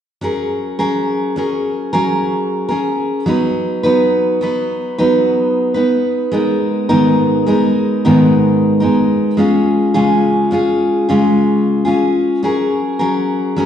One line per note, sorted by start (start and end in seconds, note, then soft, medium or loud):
0.21 0.79 F#3 medium
0.21 0.79 C#4 medium
0.21 0.78 G#4 medium
0.21 0.78 A#4 medium
0.79 1.35 F#3 soft
0.79 1.36 C#4 medium
0.79 1.36 G#4 medium
0.79 1.36 A#4 medium
1.36 1.93 F#3 medium
1.36 1.93 C#4 medium
1.36 1.92 G#4 soft
1.36 1.92 A#4 medium
1.93 2.73 F#3 medium
1.93 2.70 C#4 medium
1.93 2.69 G#4 medium
1.93 2.67 A#4 medium
2.69 3.27 C#4 soft
2.69 3.27 G#4 soft
2.69 3.26 A#4 medium
3.26 3.84 F#3 medium
3.26 3.84 B3 medium
3.26 3.83 D#4 medium
3.26 3.82 B4 medium
3.83 4.40 F#3 medium
3.83 4.41 B3 medium
3.83 4.41 D#4 medium
3.83 4.41 B4 medium
4.41 4.98 F#3 medium
4.41 4.99 B3 medium
4.41 4.98 D#4 medium
4.41 4.97 B4 medium
4.98 5.76 F#3 medium
4.98 5.77 B3 medium
4.98 5.75 D#4 medium
4.98 5.74 B4 medium
5.74 6.31 B3 soft
5.74 6.32 D#4 soft
5.74 6.32 B4 medium
6.32 6.89 G#3 medium
6.32 6.89 B3 medium
6.32 6.88 D#4 medium
6.32 6.88 A#4 medium
6.89 7.48 G#2 medium
6.89 7.47 D#3 medium
6.89 7.45 G#3 medium
6.89 7.46 B3 medium
6.89 7.47 D#4 medium
6.89 7.47 A#4 medium
7.47 8.04 G#3 medium
7.47 8.04 B3 medium
7.47 8.04 D#4 medium
7.47 8.04 A#4 medium
8.05 8.82 G#2 medium
8.05 8.82 D#3 medium
8.05 8.83 G#3 medium
8.05 8.81 B3 medium
8.05 8.80 D#4 medium
8.05 8.79 A#4 medium
8.80 9.36 G#3 soft
8.80 9.38 B3 soft
8.80 9.38 D#4 medium
8.80 9.38 A#4 medium
9.37 9.95 G#3 medium
9.37 9.94 C#4 medium
9.37 9.94 F4 medium
9.37 9.93 G#4 medium
9.94 10.53 C#3 medium
9.94 10.50 G#3 medium
9.94 10.51 C#4 medium
9.94 10.52 F4 medium
9.94 10.52 G#4 medium
10.51 11.09 G#3 medium
10.51 11.08 C#4 medium
10.51 11.08 F4 medium
10.51 11.07 G#4 medium
11.09 11.86 C#3 medium
11.09 12.42 G#3 medium
11.09 11.87 C#4 medium
11.09 11.85 F4 medium
11.09 11.84 G#4 medium
11.85 12.42 C#4 soft
11.85 12.43 F4 medium
11.85 12.42 G#4 medium
12.43 13.00 F#3 medium
12.43 13.00 C#4 medium
12.43 12.98 G#4 medium
12.43 12.98 A#4 medium
12.99 13.55 F#3 medium
12.99 13.56 C#4 medium
12.99 13.57 G#4 medium
12.99 13.57 A#4 medium
13.56 13.66 F#3 medium
13.56 13.66 C#4 medium
13.56 13.66 G#4 medium
13.56 13.66 A#4 medium